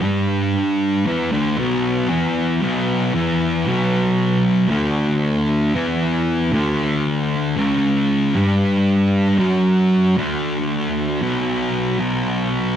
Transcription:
0.01 G2 G3
1.06 E2 E3
1.32 D2 D3
1.58 B1 B2
2.09 E2 E3
2.61 B1 B2
3.14 E2 E3
3.66 B1 B2
4.69 D2 D3
5.75 E2 E3
6.52 D2 D3
7.57 C#2 C#3
8.35 G2 G3
9.39 F#2 F#3
10.17 D2 D3
11.22 B1 B2
11.99 B1 B2

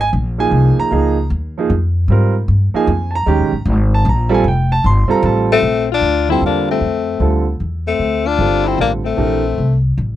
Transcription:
Already playing: G#1
0.01 G#5
0.13 A#1
0.38 F3 A#3 D#4 G#4 G#5
0.51 C2
0.78 A#5, muted upright bass stroke
0.90 C#2 F3 A#3 D#4 G#4
1.30 D#2
1.58 F3 A#3 D#4 G#4
1.70 F2
2.08 G#2 G3 C4 F4
2.12 A#4
2.48 G2
2.74 F3 A#3 D#4 G#4 G#5, muted upright bass stroke
2.87 F2
3.11 A5
3.15 A#5
3.26 D#2 D#3 G#3 C#4 G4
3.40 A#1
3.53 G#1
3.65 G#1
3.94 A5
4.05 A#1
4.09 A#5
4.29 G3 C4 F4 A4
4.34 G#5
4.44 F1 G5
4.72 A5
4.84 G1 C6
5.08 G3 C4 F4 A4 A#5, muted upright bass stroke
5.23 A1 A5
5.52 A3 C4
5.62 A#1
5.92 D4 F4
6.01 D2
6.29 D3 G3 C4 E4 F4 A4
6.41 E2
6.46 A#3 D4
6.70 A3 C4
6.81 F2
7.20 D2 D3 G3 C4 F4 A4
7.60 E2
7.87 A3 C4
7.99 D2
8.27 D4 F4
8.38 G1 D3 G3 C4 F4 A4
8.65 C4 E4
8.78 A1 A#3 D4
9.04 A3 C4
9.17 A#1 E3 A3 D4 G4 A#4
9.58 C2
9.98 A1

